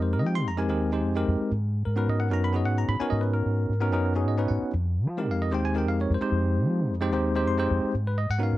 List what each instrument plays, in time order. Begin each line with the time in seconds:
Already playing: fingered electric bass F2, tine electric piano G#3 C4 D#4 G4 A#4
0.02 tine electric piano C5
0.13 tine electric piano A#4
0.19 tine electric piano D#5
0.24 fingered electric bass F3, tine electric piano G5
0.35 tine electric piano C6
0.47 fingered electric bass F2, tine electric piano A#5
0.57 tine electric piano G#3 C4 D#4 G4 A#4 G#5
0.69 fingered electric bass D#2, tine electric piano G#3 C4 D#4 G4 A#4
0.92 tine electric piano G#3 C4 D#4 G4 C5
1.05 fingered electric bass F2
1.16 tine electric piano G#3 C4 D#4 G4 A#4
1.28 fingered electric bass F2
1.40 muted fingered electric bass stroke
1.51 fingered electric bass G#2
1.85 fingered electric bass G#2, tine electric piano A#4
1.96 tine electric piano B3 C#4 D#4 F#4 A#4 B4
2.08 fingered electric bass G#2, tine electric piano D#5
2.20 tine electric piano F#5
2.30 fingered electric bass F#2, tine electric piano B3 C#4 D#4 F#4 A#4 A#5
2.44 tine electric piano B5
2.53 tine electric piano B3 C#4 D#4 F#4 G#4 D#5
2.65 fingered electric bass G#2, tine electric piano F#5
2.78 tine electric piano A#5
2.88 fingered electric bass G#2, tine electric piano B5
3.00 tine electric piano B3 C#4 D#4 F#4 A#4 G#5, muted fingered electric bass stroke
3.10 fingered electric bass G#2, tine electric piano D#5
3.21 tine electric piano B4
3.34 tine electric piano A#4
3.46 fingered electric bass G#2
3.69 fingered electric bass G#2
3.80 tine electric piano B3 C#4 D#4 F#4 A#4
3.92 fingered electric bass F#2, tine electric piano B3 C#4 D#4 F#4 A#4
4.15 tine electric piano B3 C#4 D#4 F#4 G#4
4.27 fingered electric bass G#2, tine electric piano D#5
4.37 tine electric piano B3 C#4 D#4 F#4 B4
4.48 fingered electric bass G#2, tine electric piano F#5
4.62 muted fingered electric bass stroke
4.74 fingered electric bass F2
5.07 fingered electric bass F3
5.17 tine electric piano G#3 C4 D#4 G4 A#4
5.30 fingered electric bass F2, tine electric piano F5
5.42 tine electric piano D#5
5.51 fingered electric bass D#2, tine electric piano G#3 C4 D#4 G4 C5 G5
5.65 tine electric piano G#5
5.74 tine electric piano G#3 C4 D#4 G4 A#4 G5
5.87 fingered electric bass F2, tine electric piano F5
6.01 tine electric piano C#5
6.10 fingered electric bass F2
6.14 tine electric piano C5
6.21 tine electric piano G#3 C4 D#4 G4 C5, muted fingered electric bass stroke
6.32 fingered electric bass F2
6.67 fingered electric bass F3
6.90 fingered electric bass F2
7.01 tine electric piano G#3 C4 D#4 G4 C5
7.12 fingered electric bass D#2, tine electric piano G#3 C4 D#4 G4 C5
7.35 tine electric piano G#3 C4 D#4 G4 C5
7.48 fingered electric bass F2, tine electric piano C6
7.58 tine electric piano G#3 C4 D#4 G4 C5
7.71 fingered electric bass F2
7.84 muted fingered electric bass stroke
7.94 fingered electric bass G#2
8.07 tine electric piano B4
8.18 tine electric piano D#5
8.30 fingered electric bass G#2, tine electric piano F#5
8.39 tine electric piano B3 C#4 D#4 F#4 A#4
8.43 tine electric piano F5
8.53 fingered electric bass G#2